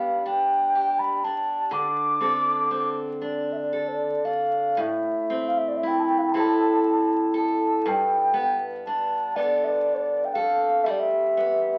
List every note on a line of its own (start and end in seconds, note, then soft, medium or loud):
0.00 1.73 G2 medium
0.00 1.83 B3 soft
0.00 0.25 D4 soft
0.00 0.74 G4 soft
0.00 0.26 F5 medium
0.26 1.24 D4 soft
0.26 1.00 G5 medium
0.75 1.83 G4 soft
0.99 1.26 B5 medium
1.24 2.21 D4 soft
1.24 1.75 A5 medium
1.71 4.79 D3 medium
1.71 2.97 D6 medium
2.21 2.70 C4 soft
2.21 3.20 D4 soft
2.21 3.72 A4 soft
2.71 5.29 C4 soft
3.22 4.24 D4 soft
3.22 3.54 D5 soft
3.52 3.58 E5 soft
3.57 3.90 D5 medium
3.73 6.35 A4 soft
3.88 3.95 C5 soft
3.94 4.26 D5 medium
4.25 4.90 D4 soft
4.25 4.81 F5 medium
4.77 7.84 A2 medium
4.77 5.49 E5 medium
5.30 6.33 C4 soft
5.48 5.59 F5 medium
5.57 5.70 E5 medium
5.68 5.78 D5 soft
5.77 5.89 E5 soft
5.83 6.33 E4 soft
5.87 6.01 G5 medium
6.00 6.07 A5 soft
6.05 6.20 G5 medium
6.19 6.24 F5 soft
6.23 6.34 G5 medium
6.32 7.95 C4 soft
6.32 7.95 E4 soft
6.32 7.33 A4 soft
6.32 6.41 B5 soft
6.39 7.37 A5 medium
7.34 8.37 A4 soft
7.34 7.90 A5 medium
7.86 10.87 G2 medium
7.86 8.61 G5 medium
8.34 9.36 B3 soft
8.87 9.37 D4 soft
8.87 9.38 A5 medium
9.36 11.37 B3 soft
9.36 10.98 D4 soft
9.36 10.34 A4 soft
9.36 9.66 D5 medium
9.64 9.96 D5 medium
9.64 9.69 E5 soft
9.95 10.00 C5 soft
9.95 10.26 D5 medium
10.25 10.35 G5 medium
10.34 10.97 A4 medium
10.34 10.85 F5 medium
10.84 11.78 G3 medium
10.84 10.92 E5 medium
10.90 11.01 D5 medium
11.00 11.78 E5 medium
11.37 11.78 B3 soft